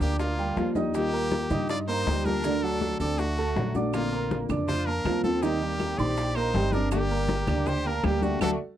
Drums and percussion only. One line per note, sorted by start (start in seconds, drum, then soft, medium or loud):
0.01 high bongo soft
0.01 high conga soft
0.01 maracas medium
0.19 high bongo medium
0.19 high conga soft
0.19 maracas medium
0.38 high bongo soft
0.38 high conga soft
0.38 maracas soft
0.57 high bongo medium
0.57 low bongo medium
0.57 high conga medium
0.57 maracas soft
0.75 high bongo soft
0.75 high conga medium
0.75 maracas medium
0.94 high bongo medium
0.94 high conga soft
0.94 maracas medium
1.13 high conga soft
1.13 maracas soft
1.32 high bongo medium
1.32 high conga loud
1.32 maracas soft
1.50 high conga medium
1.50 low conga medium
1.50 maracas medium
1.69 high bongo medium
1.69 high conga soft
1.69 maracas medium
1.88 high conga soft
1.88 maracas soft
2.07 high bongo medium
2.07 low bongo medium
2.07 high conga medium
2.07 maracas soft
2.25 high conga loud
2.25 maracas medium
2.44 high bongo medium
2.44 high conga soft
2.44 maracas loud
2.63 high conga soft
2.63 maracas soft
2.81 high bongo medium
2.81 high conga medium
2.81 maracas soft
3.00 high bongo soft
3.00 high conga soft
3.00 maracas medium
3.18 high bongo medium
3.18 high conga soft
3.18 maracas medium
3.37 high bongo soft
3.37 high conga soft
3.37 maracas soft
3.56 high bongo medium
3.56 low bongo medium
3.56 high conga medium
3.56 maracas soft
3.75 high bongo soft
3.75 high conga medium
3.75 maracas medium
3.93 high bongo medium
3.93 high conga soft
3.93 claves medium
3.93 maracas medium
4.12 high conga soft
4.12 maracas soft
4.31 high bongo medium
4.31 high conga medium
4.31 maracas soft
4.49 high conga medium
4.49 low conga medium
4.49 claves medium
4.49 maracas medium
4.68 high bongo medium
4.68 high conga soft
4.68 low conga medium
4.68 maracas medium
4.87 high conga soft
4.87 maracas soft
5.05 high bongo medium
5.05 low bongo medium
5.05 high conga medium
5.05 claves medium
5.05 maracas soft
5.24 high conga medium
5.24 maracas medium
5.43 high bongo medium
5.43 high conga soft
5.43 maracas loud
5.61 high conga soft
5.61 maracas soft
5.80 high bongo medium
5.80 high conga medium
5.80 claves medium
5.80 maracas soft
5.99 high bongo soft
5.99 high conga soft
5.99 maracas medium
6.17 high bongo medium
6.17 high conga soft
6.17 maracas medium
6.35 high bongo soft
6.35 high conga soft
6.35 claves medium
6.35 maracas soft
6.54 high bongo medium
6.54 low bongo medium
6.54 high conga medium
6.54 maracas soft
6.72 high bongo soft
6.72 high conga medium
6.72 maracas medium
6.91 high bongo medium
6.91 high conga soft
6.91 claves medium
6.91 maracas loud
7.10 high conga soft
7.10 maracas soft
7.29 high bongo medium
7.29 high conga loud
7.29 maracas soft
7.47 high conga loud
7.47 low conga medium
7.47 claves medium
7.47 maracas medium
7.66 high bongo medium
7.66 high conga soft
7.66 low conga medium
7.66 maracas medium
7.85 high conga soft
7.85 maracas soft
8.03 high bongo medium
8.03 low bongo medium
8.03 high conga medium
8.03 claves medium
8.03 maracas soft
8.22 high conga medium
8.22 maracas medium
8.41 low bongo loud
8.41 high conga medium
8.41 claves loud
8.41 maracas loud